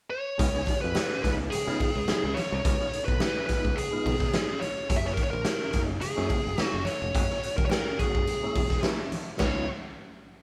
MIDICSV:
0, 0, Header, 1, 6, 480
1, 0, Start_track
1, 0, Tempo, 563380
1, 333, Time_signature, 4, 2, 24, 8
1, 8880, End_track
2, 0, Start_track
2, 0, Title_t, "Lead electric guitar"
2, 0, Program_c, 0, 29
2, 86, Note_on_c, 0, 73, 99
2, 688, Note_off_c, 0, 73, 0
2, 691, Note_on_c, 0, 71, 98
2, 1038, Note_off_c, 0, 71, 0
2, 1048, Note_on_c, 0, 71, 96
2, 1114, Note_off_c, 0, 71, 0
2, 1282, Note_on_c, 0, 68, 92
2, 1996, Note_on_c, 0, 73, 105
2, 2031, Note_off_c, 0, 68, 0
2, 2597, Note_off_c, 0, 73, 0
2, 2601, Note_on_c, 0, 71, 91
2, 2942, Note_off_c, 0, 71, 0
2, 2952, Note_on_c, 0, 71, 95
2, 3199, Note_on_c, 0, 68, 92
2, 3211, Note_off_c, 0, 71, 0
2, 3917, Note_on_c, 0, 73, 105
2, 3948, Note_off_c, 0, 68, 0
2, 4227, Note_on_c, 0, 76, 84
2, 4229, Note_off_c, 0, 73, 0
2, 4308, Note_off_c, 0, 76, 0
2, 4313, Note_on_c, 0, 73, 76
2, 4373, Note_off_c, 0, 73, 0
2, 4377, Note_on_c, 0, 70, 84
2, 4457, Note_off_c, 0, 70, 0
2, 4460, Note_on_c, 0, 73, 77
2, 4519, Note_off_c, 0, 73, 0
2, 4522, Note_on_c, 0, 70, 82
2, 4856, Note_off_c, 0, 70, 0
2, 4867, Note_on_c, 0, 70, 97
2, 4935, Note_off_c, 0, 70, 0
2, 5122, Note_on_c, 0, 68, 94
2, 5659, Note_off_c, 0, 68, 0
2, 5659, Note_on_c, 0, 66, 94
2, 5836, Note_on_c, 0, 73, 101
2, 5868, Note_off_c, 0, 66, 0
2, 6446, Note_off_c, 0, 73, 0
2, 6449, Note_on_c, 0, 70, 88
2, 6505, Note_off_c, 0, 70, 0
2, 6521, Note_on_c, 0, 73, 77
2, 6560, Note_off_c, 0, 73, 0
2, 6564, Note_on_c, 0, 70, 91
2, 6790, Note_off_c, 0, 70, 0
2, 6807, Note_on_c, 0, 68, 82
2, 7494, Note_off_c, 0, 68, 0
2, 8008, Note_on_c, 0, 73, 86
2, 8232, Note_off_c, 0, 73, 0
2, 8880, End_track
3, 0, Start_track
3, 0, Title_t, "Tonewheel organ"
3, 0, Program_c, 1, 16
3, 324, Note_on_c, 1, 56, 109
3, 330, Note_on_c, 1, 59, 97
3, 335, Note_on_c, 1, 63, 102
3, 342, Note_on_c, 1, 65, 127
3, 401, Note_off_c, 1, 56, 0
3, 405, Note_off_c, 1, 59, 0
3, 407, Note_off_c, 1, 63, 0
3, 410, Note_off_c, 1, 65, 0
3, 454, Note_on_c, 1, 56, 82
3, 460, Note_on_c, 1, 59, 83
3, 465, Note_on_c, 1, 63, 82
3, 473, Note_on_c, 1, 68, 85
3, 522, Note_off_c, 1, 56, 0
3, 525, Note_off_c, 1, 59, 0
3, 528, Note_off_c, 1, 63, 0
3, 531, Note_off_c, 1, 68, 0
3, 570, Note_on_c, 1, 63, 27
3, 585, Note_on_c, 1, 65, 32
3, 633, Note_off_c, 1, 63, 0
3, 641, Note_off_c, 1, 65, 0
3, 806, Note_on_c, 1, 63, 26
3, 822, Note_on_c, 1, 65, 31
3, 872, Note_off_c, 1, 63, 0
3, 879, Note_off_c, 1, 65, 0
3, 933, Note_on_c, 1, 63, 28
3, 951, Note_on_c, 1, 65, 32
3, 992, Note_off_c, 1, 63, 0
3, 1000, Note_off_c, 1, 65, 0
3, 1050, Note_on_c, 1, 56, 66
3, 1057, Note_on_c, 1, 59, 66
3, 1059, Note_on_c, 1, 63, 68
3, 1065, Note_on_c, 1, 65, 83
3, 1260, Note_off_c, 1, 56, 0
3, 1264, Note_off_c, 1, 59, 0
3, 1265, Note_off_c, 1, 63, 0
3, 1268, Note_off_c, 1, 65, 0
3, 1411, Note_on_c, 1, 56, 115
3, 1417, Note_on_c, 1, 59, 95
3, 1424, Note_on_c, 1, 63, 94
3, 1427, Note_on_c, 1, 65, 114
3, 1620, Note_off_c, 1, 56, 0
3, 1623, Note_off_c, 1, 59, 0
3, 1626, Note_off_c, 1, 63, 0
3, 1628, Note_off_c, 1, 65, 0
3, 1773, Note_on_c, 1, 56, 67
3, 1776, Note_on_c, 1, 59, 67
3, 1781, Note_on_c, 1, 63, 57
3, 1789, Note_on_c, 1, 68, 65
3, 1917, Note_off_c, 1, 56, 0
3, 1919, Note_off_c, 1, 59, 0
3, 1922, Note_off_c, 1, 63, 0
3, 1925, Note_off_c, 1, 68, 0
3, 2017, Note_on_c, 1, 63, 25
3, 2034, Note_on_c, 1, 65, 27
3, 2077, Note_off_c, 1, 63, 0
3, 2086, Note_off_c, 1, 65, 0
3, 2251, Note_on_c, 1, 56, 82
3, 2255, Note_on_c, 1, 59, 82
3, 2262, Note_on_c, 1, 63, 85
3, 2266, Note_on_c, 1, 65, 106
3, 2326, Note_off_c, 1, 56, 0
3, 2328, Note_off_c, 1, 59, 0
3, 2332, Note_off_c, 1, 63, 0
3, 2333, Note_off_c, 1, 65, 0
3, 2382, Note_on_c, 1, 56, 72
3, 2388, Note_on_c, 1, 59, 67
3, 2393, Note_on_c, 1, 63, 66
3, 2398, Note_on_c, 1, 65, 73
3, 2447, Note_off_c, 1, 56, 0
3, 2450, Note_off_c, 1, 59, 0
3, 2452, Note_off_c, 1, 63, 0
3, 2455, Note_off_c, 1, 65, 0
3, 2493, Note_on_c, 1, 63, 28
3, 2509, Note_on_c, 1, 68, 32
3, 2556, Note_off_c, 1, 63, 0
3, 2564, Note_off_c, 1, 68, 0
3, 2732, Note_on_c, 1, 63, 28
3, 2749, Note_on_c, 1, 68, 32
3, 2795, Note_off_c, 1, 63, 0
3, 2803, Note_off_c, 1, 68, 0
3, 2861, Note_on_c, 1, 63, 31
3, 2877, Note_on_c, 1, 68, 33
3, 2916, Note_off_c, 1, 63, 0
3, 2924, Note_off_c, 1, 68, 0
3, 2966, Note_on_c, 1, 56, 76
3, 2971, Note_on_c, 1, 59, 71
3, 2978, Note_on_c, 1, 63, 62
3, 2982, Note_on_c, 1, 65, 84
3, 3178, Note_off_c, 1, 56, 0
3, 3181, Note_off_c, 1, 59, 0
3, 3184, Note_off_c, 1, 63, 0
3, 3186, Note_off_c, 1, 65, 0
3, 3331, Note_on_c, 1, 56, 100
3, 3340, Note_on_c, 1, 59, 106
3, 3342, Note_on_c, 1, 63, 96
3, 3350, Note_on_c, 1, 65, 112
3, 3540, Note_off_c, 1, 56, 0
3, 3544, Note_off_c, 1, 59, 0
3, 3545, Note_off_c, 1, 63, 0
3, 3549, Note_off_c, 1, 65, 0
3, 3680, Note_on_c, 1, 56, 64
3, 3688, Note_on_c, 1, 59, 63
3, 3695, Note_on_c, 1, 63, 60
3, 3699, Note_on_c, 1, 68, 69
3, 3830, Note_off_c, 1, 56, 0
3, 3834, Note_off_c, 1, 59, 0
3, 3838, Note_off_c, 1, 63, 0
3, 3840, Note_off_c, 1, 68, 0
3, 3929, Note_on_c, 1, 63, 26
3, 3945, Note_on_c, 1, 65, 29
3, 3992, Note_off_c, 1, 63, 0
3, 4001, Note_off_c, 1, 65, 0
3, 4160, Note_on_c, 1, 56, 89
3, 4166, Note_on_c, 1, 58, 89
3, 4170, Note_on_c, 1, 61, 91
3, 4177, Note_on_c, 1, 64, 101
3, 4239, Note_off_c, 1, 56, 0
3, 4242, Note_off_c, 1, 58, 0
3, 4244, Note_off_c, 1, 61, 0
3, 4248, Note_off_c, 1, 64, 0
3, 4292, Note_on_c, 1, 56, 76
3, 4297, Note_on_c, 1, 58, 60
3, 4301, Note_on_c, 1, 61, 64
3, 4308, Note_on_c, 1, 64, 88
3, 4361, Note_off_c, 1, 56, 0
3, 4363, Note_off_c, 1, 58, 0
3, 4365, Note_off_c, 1, 61, 0
3, 4369, Note_off_c, 1, 64, 0
3, 4400, Note_on_c, 1, 61, 29
3, 4418, Note_on_c, 1, 63, 32
3, 4468, Note_off_c, 1, 61, 0
3, 4477, Note_off_c, 1, 63, 0
3, 4634, Note_on_c, 1, 61, 28
3, 4653, Note_on_c, 1, 64, 30
3, 4705, Note_off_c, 1, 61, 0
3, 4714, Note_off_c, 1, 64, 0
3, 4765, Note_on_c, 1, 61, 30
3, 4782, Note_on_c, 1, 64, 34
3, 4827, Note_off_c, 1, 61, 0
3, 4835, Note_off_c, 1, 64, 0
3, 4877, Note_on_c, 1, 56, 75
3, 4879, Note_on_c, 1, 58, 65
3, 4885, Note_on_c, 1, 61, 67
3, 4894, Note_on_c, 1, 63, 74
3, 5092, Note_off_c, 1, 56, 0
3, 5093, Note_off_c, 1, 58, 0
3, 5096, Note_off_c, 1, 61, 0
3, 5101, Note_off_c, 1, 63, 0
3, 5241, Note_on_c, 1, 56, 106
3, 5251, Note_on_c, 1, 58, 87
3, 5255, Note_on_c, 1, 61, 104
3, 5259, Note_on_c, 1, 64, 116
3, 5453, Note_off_c, 1, 56, 0
3, 5458, Note_off_c, 1, 58, 0
3, 5460, Note_off_c, 1, 61, 0
3, 5462, Note_off_c, 1, 64, 0
3, 5598, Note_on_c, 1, 56, 73
3, 5605, Note_on_c, 1, 58, 69
3, 5607, Note_on_c, 1, 61, 65
3, 5613, Note_on_c, 1, 64, 74
3, 5748, Note_off_c, 1, 56, 0
3, 5751, Note_off_c, 1, 58, 0
3, 5752, Note_off_c, 1, 61, 0
3, 5755, Note_off_c, 1, 64, 0
3, 5837, Note_on_c, 1, 61, 25
3, 5854, Note_on_c, 1, 64, 30
3, 5905, Note_off_c, 1, 61, 0
3, 5914, Note_off_c, 1, 64, 0
3, 6076, Note_on_c, 1, 56, 95
3, 6083, Note_on_c, 1, 58, 87
3, 6088, Note_on_c, 1, 61, 85
3, 6094, Note_on_c, 1, 66, 98
3, 6156, Note_off_c, 1, 56, 0
3, 6159, Note_off_c, 1, 58, 0
3, 6162, Note_off_c, 1, 61, 0
3, 6165, Note_off_c, 1, 66, 0
3, 6215, Note_on_c, 1, 56, 70
3, 6219, Note_on_c, 1, 58, 63
3, 6224, Note_on_c, 1, 61, 63
3, 6232, Note_on_c, 1, 64, 86
3, 6281, Note_off_c, 1, 56, 0
3, 6283, Note_off_c, 1, 58, 0
3, 6285, Note_off_c, 1, 61, 0
3, 6289, Note_off_c, 1, 64, 0
3, 6323, Note_on_c, 1, 61, 28
3, 6344, Note_on_c, 1, 66, 31
3, 6388, Note_off_c, 1, 61, 0
3, 6398, Note_off_c, 1, 66, 0
3, 6566, Note_on_c, 1, 61, 27
3, 6581, Note_on_c, 1, 64, 29
3, 6629, Note_off_c, 1, 61, 0
3, 6636, Note_off_c, 1, 64, 0
3, 6696, Note_on_c, 1, 61, 31
3, 6711, Note_on_c, 1, 63, 33
3, 6751, Note_off_c, 1, 61, 0
3, 6758, Note_off_c, 1, 63, 0
3, 6809, Note_on_c, 1, 56, 76
3, 6813, Note_on_c, 1, 58, 64
3, 6818, Note_on_c, 1, 61, 70
3, 6822, Note_on_c, 1, 66, 81
3, 7017, Note_off_c, 1, 56, 0
3, 7019, Note_off_c, 1, 58, 0
3, 7021, Note_off_c, 1, 61, 0
3, 7023, Note_off_c, 1, 66, 0
3, 7173, Note_on_c, 1, 56, 99
3, 7179, Note_on_c, 1, 58, 101
3, 7186, Note_on_c, 1, 61, 91
3, 7194, Note_on_c, 1, 64, 109
3, 7378, Note_off_c, 1, 56, 0
3, 7381, Note_off_c, 1, 58, 0
3, 7385, Note_off_c, 1, 61, 0
3, 7389, Note_off_c, 1, 64, 0
3, 7528, Note_on_c, 1, 56, 76
3, 7534, Note_on_c, 1, 58, 75
3, 7540, Note_on_c, 1, 61, 65
3, 7548, Note_on_c, 1, 64, 92
3, 7672, Note_off_c, 1, 56, 0
3, 7675, Note_off_c, 1, 58, 0
3, 7678, Note_off_c, 1, 61, 0
3, 7682, Note_off_c, 1, 64, 0
3, 7762, Note_on_c, 1, 61, 28
3, 7780, Note_on_c, 1, 63, 35
3, 7827, Note_off_c, 1, 61, 0
3, 7836, Note_off_c, 1, 63, 0
3, 8010, Note_on_c, 1, 59, 72
3, 8011, Note_on_c, 1, 63, 76
3, 8011, Note_on_c, 1, 65, 92
3, 8012, Note_on_c, 1, 56, 82
3, 8233, Note_off_c, 1, 59, 0
3, 8233, Note_off_c, 1, 63, 0
3, 8233, Note_off_c, 1, 65, 0
3, 8234, Note_off_c, 1, 56, 0
3, 8880, End_track
4, 0, Start_track
4, 0, Title_t, "Fingered electric bass"
4, 0, Program_c, 2, 33
4, 336, Note_on_c, 2, 37, 105
4, 525, Note_off_c, 2, 37, 0
4, 717, Note_on_c, 2, 41, 82
4, 800, Note_off_c, 2, 41, 0
4, 1059, Note_on_c, 2, 37, 80
4, 1247, Note_off_c, 2, 37, 0
4, 1427, Note_on_c, 2, 49, 89
4, 1514, Note_off_c, 2, 49, 0
4, 1666, Note_on_c, 2, 37, 78
4, 1754, Note_off_c, 2, 37, 0
4, 1905, Note_on_c, 2, 37, 81
4, 1993, Note_off_c, 2, 37, 0
4, 2150, Note_on_c, 2, 36, 98
4, 2236, Note_off_c, 2, 36, 0
4, 2257, Note_on_c, 2, 37, 94
4, 2357, Note_off_c, 2, 37, 0
4, 2623, Note_on_c, 2, 35, 95
4, 2712, Note_off_c, 2, 35, 0
4, 3109, Note_on_c, 2, 37, 79
4, 3195, Note_off_c, 2, 37, 0
4, 3460, Note_on_c, 2, 35, 96
4, 3647, Note_off_c, 2, 35, 0
4, 4175, Note_on_c, 2, 30, 114
4, 4364, Note_off_c, 2, 30, 0
4, 4542, Note_on_c, 2, 34, 102
4, 4630, Note_off_c, 2, 34, 0
4, 4892, Note_on_c, 2, 30, 87
4, 5082, Note_off_c, 2, 30, 0
4, 5264, Note_on_c, 2, 42, 88
4, 5351, Note_off_c, 2, 42, 0
4, 5510, Note_on_c, 2, 30, 77
4, 5594, Note_off_c, 2, 30, 0
4, 5740, Note_on_c, 2, 30, 90
4, 5829, Note_off_c, 2, 30, 0
4, 5979, Note_on_c, 2, 29, 88
4, 6068, Note_off_c, 2, 29, 0
4, 6090, Note_on_c, 2, 30, 112
4, 6191, Note_off_c, 2, 30, 0
4, 6456, Note_on_c, 2, 28, 80
4, 6546, Note_off_c, 2, 28, 0
4, 6944, Note_on_c, 2, 30, 76
4, 7031, Note_off_c, 2, 30, 0
4, 7293, Note_on_c, 2, 28, 86
4, 7481, Note_off_c, 2, 28, 0
4, 8015, Note_on_c, 2, 37, 93
4, 8236, Note_off_c, 2, 37, 0
4, 8880, End_track
5, 0, Start_track
5, 0, Title_t, "Muted fingered electric bass strokes"
5, 1305, Note_on_c, 9, 29, 46
5, 1390, Note_off_c, 9, 29, 0
5, 1783, Note_on_c, 9, 29, 45
5, 1868, Note_off_c, 9, 29, 0
5, 2980, Note_on_c, 9, 29, 45
5, 3065, Note_off_c, 9, 29, 0
5, 5141, Note_on_c, 9, 29, 49
5, 5226, Note_off_c, 9, 29, 0
5, 6815, Note_on_c, 9, 29, 45
5, 6901, Note_off_c, 9, 29, 0
5, 8880, End_track
6, 0, Start_track
6, 0, Title_t, "Drums"
6, 335, Note_on_c, 9, 36, 122
6, 336, Note_on_c, 9, 42, 97
6, 420, Note_off_c, 9, 36, 0
6, 421, Note_off_c, 9, 42, 0
6, 463, Note_on_c, 9, 38, 37
6, 548, Note_off_c, 9, 38, 0
6, 563, Note_on_c, 9, 62, 40
6, 571, Note_on_c, 9, 36, 89
6, 579, Note_on_c, 9, 42, 69
6, 648, Note_off_c, 9, 62, 0
6, 656, Note_off_c, 9, 36, 0
6, 664, Note_off_c, 9, 42, 0
6, 808, Note_on_c, 9, 63, 82
6, 813, Note_on_c, 9, 38, 127
6, 813, Note_on_c, 9, 42, 78
6, 893, Note_off_c, 9, 63, 0
6, 898, Note_off_c, 9, 38, 0
6, 898, Note_off_c, 9, 42, 0
6, 1057, Note_on_c, 9, 36, 84
6, 1059, Note_on_c, 9, 42, 64
6, 1061, Note_on_c, 9, 38, 31
6, 1066, Note_on_c, 9, 62, 48
6, 1142, Note_off_c, 9, 36, 0
6, 1144, Note_off_c, 9, 42, 0
6, 1146, Note_off_c, 9, 38, 0
6, 1151, Note_off_c, 9, 62, 0
6, 1294, Note_on_c, 9, 42, 88
6, 1304, Note_on_c, 9, 62, 54
6, 1304, Note_on_c, 9, 64, 79
6, 1379, Note_off_c, 9, 42, 0
6, 1390, Note_off_c, 9, 62, 0
6, 1390, Note_off_c, 9, 64, 0
6, 1422, Note_on_c, 9, 38, 29
6, 1507, Note_off_c, 9, 38, 0
6, 1529, Note_on_c, 9, 46, 74
6, 1536, Note_on_c, 9, 36, 85
6, 1540, Note_on_c, 9, 62, 52
6, 1540, Note_on_c, 9, 64, 66
6, 1614, Note_off_c, 9, 46, 0
6, 1622, Note_off_c, 9, 36, 0
6, 1625, Note_off_c, 9, 62, 0
6, 1625, Note_off_c, 9, 64, 0
6, 1768, Note_on_c, 9, 42, 81
6, 1771, Note_on_c, 9, 38, 113
6, 1774, Note_on_c, 9, 63, 83
6, 1854, Note_off_c, 9, 42, 0
6, 1856, Note_off_c, 9, 38, 0
6, 1859, Note_off_c, 9, 63, 0
6, 2016, Note_on_c, 9, 38, 31
6, 2018, Note_on_c, 9, 42, 70
6, 2018, Note_on_c, 9, 63, 80
6, 2101, Note_off_c, 9, 38, 0
6, 2103, Note_off_c, 9, 42, 0
6, 2104, Note_off_c, 9, 63, 0
6, 2254, Note_on_c, 9, 42, 100
6, 2258, Note_on_c, 9, 36, 125
6, 2339, Note_off_c, 9, 42, 0
6, 2343, Note_off_c, 9, 36, 0
6, 2382, Note_on_c, 9, 38, 34
6, 2467, Note_off_c, 9, 38, 0
6, 2499, Note_on_c, 9, 42, 66
6, 2584, Note_off_c, 9, 42, 0
6, 2625, Note_on_c, 9, 36, 95
6, 2710, Note_off_c, 9, 36, 0
6, 2729, Note_on_c, 9, 38, 114
6, 2729, Note_on_c, 9, 42, 75
6, 2730, Note_on_c, 9, 63, 79
6, 2814, Note_off_c, 9, 38, 0
6, 2814, Note_off_c, 9, 42, 0
6, 2815, Note_off_c, 9, 63, 0
6, 2970, Note_on_c, 9, 42, 63
6, 2976, Note_on_c, 9, 36, 78
6, 2982, Note_on_c, 9, 62, 47
6, 3055, Note_off_c, 9, 42, 0
6, 3061, Note_off_c, 9, 36, 0
6, 3068, Note_off_c, 9, 62, 0
6, 3107, Note_on_c, 9, 36, 82
6, 3192, Note_off_c, 9, 36, 0
6, 3218, Note_on_c, 9, 42, 85
6, 3223, Note_on_c, 9, 62, 53
6, 3223, Note_on_c, 9, 64, 68
6, 3303, Note_off_c, 9, 42, 0
6, 3308, Note_off_c, 9, 62, 0
6, 3308, Note_off_c, 9, 64, 0
6, 3455, Note_on_c, 9, 46, 72
6, 3457, Note_on_c, 9, 36, 75
6, 3464, Note_on_c, 9, 62, 59
6, 3464, Note_on_c, 9, 64, 76
6, 3541, Note_off_c, 9, 46, 0
6, 3543, Note_off_c, 9, 36, 0
6, 3549, Note_off_c, 9, 62, 0
6, 3549, Note_off_c, 9, 64, 0
6, 3581, Note_on_c, 9, 36, 96
6, 3583, Note_on_c, 9, 38, 33
6, 3667, Note_off_c, 9, 36, 0
6, 3668, Note_off_c, 9, 38, 0
6, 3692, Note_on_c, 9, 42, 80
6, 3694, Note_on_c, 9, 38, 121
6, 3694, Note_on_c, 9, 63, 84
6, 3777, Note_off_c, 9, 42, 0
6, 3780, Note_off_c, 9, 38, 0
6, 3780, Note_off_c, 9, 63, 0
6, 3934, Note_on_c, 9, 63, 83
6, 3938, Note_on_c, 9, 42, 62
6, 4019, Note_off_c, 9, 63, 0
6, 4023, Note_off_c, 9, 42, 0
6, 4171, Note_on_c, 9, 42, 104
6, 4174, Note_on_c, 9, 36, 109
6, 4256, Note_off_c, 9, 42, 0
6, 4259, Note_off_c, 9, 36, 0
6, 4300, Note_on_c, 9, 38, 36
6, 4385, Note_off_c, 9, 38, 0
6, 4407, Note_on_c, 9, 36, 95
6, 4407, Note_on_c, 9, 42, 62
6, 4410, Note_on_c, 9, 62, 35
6, 4492, Note_off_c, 9, 42, 0
6, 4493, Note_off_c, 9, 36, 0
6, 4495, Note_off_c, 9, 62, 0
6, 4641, Note_on_c, 9, 38, 126
6, 4641, Note_on_c, 9, 42, 77
6, 4650, Note_on_c, 9, 63, 75
6, 4726, Note_off_c, 9, 38, 0
6, 4726, Note_off_c, 9, 42, 0
6, 4736, Note_off_c, 9, 63, 0
6, 4882, Note_on_c, 9, 42, 63
6, 4883, Note_on_c, 9, 38, 30
6, 4888, Note_on_c, 9, 36, 89
6, 4896, Note_on_c, 9, 62, 50
6, 4967, Note_off_c, 9, 42, 0
6, 4969, Note_off_c, 9, 38, 0
6, 4973, Note_off_c, 9, 36, 0
6, 4981, Note_off_c, 9, 62, 0
6, 5122, Note_on_c, 9, 42, 81
6, 5129, Note_on_c, 9, 62, 54
6, 5129, Note_on_c, 9, 64, 79
6, 5208, Note_off_c, 9, 42, 0
6, 5214, Note_off_c, 9, 62, 0
6, 5214, Note_off_c, 9, 64, 0
6, 5253, Note_on_c, 9, 38, 33
6, 5338, Note_off_c, 9, 38, 0
6, 5357, Note_on_c, 9, 46, 76
6, 5367, Note_on_c, 9, 36, 80
6, 5370, Note_on_c, 9, 62, 56
6, 5370, Note_on_c, 9, 64, 78
6, 5443, Note_off_c, 9, 46, 0
6, 5452, Note_off_c, 9, 36, 0
6, 5455, Note_off_c, 9, 62, 0
6, 5455, Note_off_c, 9, 64, 0
6, 5602, Note_on_c, 9, 63, 82
6, 5603, Note_on_c, 9, 42, 82
6, 5606, Note_on_c, 9, 38, 103
6, 5687, Note_off_c, 9, 63, 0
6, 5689, Note_off_c, 9, 42, 0
6, 5691, Note_off_c, 9, 38, 0
6, 5836, Note_on_c, 9, 63, 87
6, 5847, Note_on_c, 9, 38, 33
6, 5849, Note_on_c, 9, 42, 63
6, 5922, Note_off_c, 9, 63, 0
6, 5932, Note_off_c, 9, 38, 0
6, 5934, Note_off_c, 9, 42, 0
6, 6088, Note_on_c, 9, 36, 109
6, 6090, Note_on_c, 9, 42, 92
6, 6174, Note_off_c, 9, 36, 0
6, 6176, Note_off_c, 9, 42, 0
6, 6218, Note_on_c, 9, 38, 34
6, 6303, Note_off_c, 9, 38, 0
6, 6332, Note_on_c, 9, 42, 69
6, 6418, Note_off_c, 9, 42, 0
6, 6458, Note_on_c, 9, 36, 111
6, 6543, Note_off_c, 9, 36, 0
6, 6557, Note_on_c, 9, 63, 77
6, 6572, Note_on_c, 9, 38, 120
6, 6573, Note_on_c, 9, 42, 77
6, 6642, Note_off_c, 9, 63, 0
6, 6658, Note_off_c, 9, 38, 0
6, 6658, Note_off_c, 9, 42, 0
6, 6810, Note_on_c, 9, 42, 63
6, 6811, Note_on_c, 9, 36, 83
6, 6819, Note_on_c, 9, 62, 51
6, 6895, Note_off_c, 9, 42, 0
6, 6896, Note_off_c, 9, 36, 0
6, 6904, Note_off_c, 9, 62, 0
6, 6942, Note_on_c, 9, 36, 88
6, 7027, Note_off_c, 9, 36, 0
6, 7048, Note_on_c, 9, 42, 82
6, 7050, Note_on_c, 9, 62, 57
6, 7050, Note_on_c, 9, 64, 70
6, 7133, Note_off_c, 9, 42, 0
6, 7135, Note_off_c, 9, 62, 0
6, 7135, Note_off_c, 9, 64, 0
6, 7288, Note_on_c, 9, 46, 69
6, 7288, Note_on_c, 9, 62, 52
6, 7288, Note_on_c, 9, 64, 76
6, 7289, Note_on_c, 9, 36, 90
6, 7373, Note_off_c, 9, 46, 0
6, 7373, Note_off_c, 9, 62, 0
6, 7373, Note_off_c, 9, 64, 0
6, 7374, Note_off_c, 9, 36, 0
6, 7414, Note_on_c, 9, 36, 93
6, 7415, Note_on_c, 9, 38, 37
6, 7499, Note_off_c, 9, 36, 0
6, 7500, Note_off_c, 9, 38, 0
6, 7520, Note_on_c, 9, 42, 72
6, 7522, Note_on_c, 9, 63, 80
6, 7523, Note_on_c, 9, 38, 112
6, 7605, Note_off_c, 9, 42, 0
6, 7607, Note_off_c, 9, 63, 0
6, 7608, Note_off_c, 9, 38, 0
6, 7770, Note_on_c, 9, 42, 60
6, 7771, Note_on_c, 9, 63, 89
6, 7855, Note_off_c, 9, 42, 0
6, 7856, Note_off_c, 9, 63, 0
6, 8001, Note_on_c, 9, 62, 81
6, 8007, Note_on_c, 9, 49, 82
6, 8009, Note_on_c, 9, 36, 96
6, 8009, Note_on_c, 9, 38, 99
6, 8086, Note_off_c, 9, 62, 0
6, 8092, Note_off_c, 9, 49, 0
6, 8094, Note_off_c, 9, 36, 0
6, 8094, Note_off_c, 9, 38, 0
6, 8880, End_track
0, 0, End_of_file